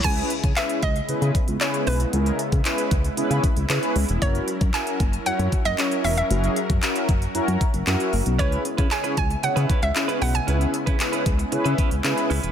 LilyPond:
<<
  \new Staff \with { instrumentName = "Synth pluck" } { \time 4/4 \key cis \dorian \tempo 4 = 115 gis''4 e''8 dis''4. cis''8 b'8~ | b'4. r2 r8 | cis''4 gis''4 fis''8. dis''8. e''16 e''16~ | e''8. r2. r16 |
cis''4 gis''8 gis''8 fis''8. e''8. fis''16 gis''16~ | gis''8. r2. r16 | }
  \new Staff \with { instrumentName = "Analog polysynth" } { \time 4/4 \key cis \dorian <cis' e' gis' b'>8 r8 <cis' e' gis' b'>8 r8 <cis' e' gis' b'>8 r8 <cis' e' gis' b'>8 r8 | <cis' e' gis' ais'>8 r8 <cis' e' gis' b'>8 r8 <cis' e' gis' b'>8 r8 <cis' e' gis' b'>8 r8 | <cis' e' fis' ais'>8 r8 <cis' e' fis' ais'>8 r8 <cis' e' fis' cis''>8 r8 <cis' e' fis' cis''>8 r8 | <cis' e' fis' gis'>8 r8 <cis' e' fis' ais'>8 r8 <cis' e' fis' ais'>8 r8 <cis' e' fis' ais'>8 r8 |
<cis' e' gis' b'>8 r8 <cis' e' gis' cis''>8 r8 <cis' e' gis' cis''>8 r8 <cis' e' gis' b'>8 r8 | <cis' e' gis' b'>8 r8 <cis' e' gis' b'>8 r8 <cis' e' gis' b'>8 r8 <cis' e' gis' b'>8 r8 | }
  \new Staff \with { instrumentName = "Clean electric guitar" } { \time 4/4 \key cis \dorian r1 | r1 | r1 | r1 |
<cis' e' b'>8 r16 <cis' e' b'>16 r16 <cis' e' b'>8 r8 <cis' e' b'>16 <cis' e' b'>16 r8 <cis' e' b'>16 <cis' e' b'>16 r16 | <cis' e' b'>8 r16 <cis' e' b'>16 r16 <cis' e' b'>8 r8 <cis' e' b'>16 <cis' e' b'>16 r8. <cis' e' b'>16 <cis' e' b'>16 | }
  \new Staff \with { instrumentName = "Analog synth pad" } { \time 4/4 \key cis \dorian << { <b e'>1~ | <b e'>1 | ais'1 | fis'1 |
<b e'>1~ | <b e'>1 | } \\ { <cis gis>1~ | <cis gis>1 | <fis cis'>1~ | <fis cis'>1 |
<cis gis>1~ | <cis gis>1 | } >> }
  \new Staff \with { instrumentName = "Analog synth bass" } { \clef bass \time 4/4 \key cis \dorian cis,8 r16 cis16 r8 cis,8 cis16 cis16 r16 cis,16 r8 b,,8 | cis,8 r16 cis16 r8 cis,8 cis16 cis16 r16 cis,16 cis16 r16 cis,16 e,,16 | fis,,8 r16 fis,16 r8 fis,,8 fis,16 fis,16 r16 fis,,16 r8 e,,8 | fis,,8 r16 fis,16 r8 fis,,8 fis,16 fis,16 r16 fis,,16 fis,16 r16 fis,,16 b,,16 |
cis,8 r16 cis16 r8 cis,8 cis16 cis16 r16 cis,16 r8 b,,8 | cis,8 r16 cis16 r8 cis,8 cis16 cis16 r16 cis,16 cis16 r16 cis,16 e,,16 | }
  \new DrumStaff \with { instrumentName = "Drums" } \drummode { \time 4/4 <cymc hh bd>16 hh16 hh16 <hh bd>16 <hc hh>16 hh16 <hh bd>16 hh16 hh16 hh16 <hh bd>16 hh16 <hc hh>16 hh16 hho16 hh16 | hh16 hh16 hh16 <hh bd>16 <hc hh>16 hh16 <hh bd>16 hh16 hh16 hh16 <hh bd>16 hh16 <hc hh>16 hh16 hho16 hh16 | <hh bd>16 hh16 hh16 <hh bd>16 <hc hh>16 hh16 <hh bd>16 hh16 hh16 hh16 <hh bd>16 hh16 <hc hh>16 hh16 hho16 hh16 | hh16 hh16 hh16 <hh bd>16 <hc hh>16 hh16 <hh bd>16 hh16 hh16 hh16 <hh bd>16 hh16 <hc hh>16 hh16 hho16 hh16 |
<hh bd>16 hh16 hh16 <hh bd>16 <hc hh>16 hh16 <hh bd>16 hh16 hh16 hh16 <hh bd>16 hh16 <hc hh>16 hh16 hho16 hh16 | hh16 hh16 hh16 <hh bd>16 <hc hh>16 hh16 <hh bd>16 hh16 hh16 hh16 <hh bd>16 hh16 <hc hh>16 hh16 hho16 hh16 | }
>>